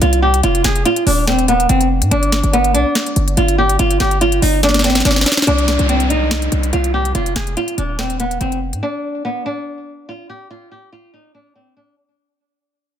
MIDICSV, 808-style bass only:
0, 0, Header, 1, 2, 480
1, 0, Start_track
1, 0, Key_signature, -3, "minor"
1, 0, Tempo, 419580
1, 498, Time_signature, 4, 2, 24, 8
1, 14865, End_track
2, 0, Start_track
2, 0, Title_t, "808-style bass"
2, 0, Program_c, 0, 38
2, 18, Note_on_c, 0, 36, 110
2, 479, Note_off_c, 0, 36, 0
2, 498, Note_on_c, 0, 29, 112
2, 728, Note_off_c, 0, 29, 0
2, 738, Note_on_c, 0, 29, 108
2, 968, Note_off_c, 0, 29, 0
2, 1218, Note_on_c, 0, 27, 102
2, 1909, Note_off_c, 0, 27, 0
2, 1939, Note_on_c, 0, 29, 107
2, 2305, Note_on_c, 0, 44, 103
2, 2322, Note_off_c, 0, 29, 0
2, 2412, Note_off_c, 0, 44, 0
2, 2418, Note_on_c, 0, 31, 113
2, 2770, Note_off_c, 0, 31, 0
2, 2786, Note_on_c, 0, 31, 109
2, 3138, Note_on_c, 0, 35, 103
2, 3156, Note_off_c, 0, 31, 0
2, 3259, Note_off_c, 0, 35, 0
2, 3619, Note_on_c, 0, 31, 105
2, 3849, Note_off_c, 0, 31, 0
2, 3859, Note_on_c, 0, 31, 107
2, 4319, Note_off_c, 0, 31, 0
2, 4339, Note_on_c, 0, 31, 114
2, 4569, Note_off_c, 0, 31, 0
2, 4578, Note_on_c, 0, 31, 109
2, 5039, Note_off_c, 0, 31, 0
2, 5059, Note_on_c, 0, 31, 105
2, 5750, Note_off_c, 0, 31, 0
2, 5779, Note_on_c, 0, 31, 110
2, 6009, Note_off_c, 0, 31, 0
2, 6259, Note_on_c, 0, 36, 109
2, 6611, Note_off_c, 0, 36, 0
2, 6626, Note_on_c, 0, 36, 104
2, 7425, Note_off_c, 0, 36, 0
2, 7459, Note_on_c, 0, 36, 107
2, 7689, Note_off_c, 0, 36, 0
2, 7699, Note_on_c, 0, 36, 107
2, 8159, Note_off_c, 0, 36, 0
2, 8178, Note_on_c, 0, 29, 107
2, 8408, Note_off_c, 0, 29, 0
2, 8418, Note_on_c, 0, 29, 107
2, 8649, Note_off_c, 0, 29, 0
2, 8898, Note_on_c, 0, 27, 101
2, 9589, Note_off_c, 0, 27, 0
2, 9619, Note_on_c, 0, 29, 108
2, 9985, Note_on_c, 0, 44, 96
2, 10002, Note_off_c, 0, 29, 0
2, 10092, Note_off_c, 0, 44, 0
2, 14865, End_track
0, 0, End_of_file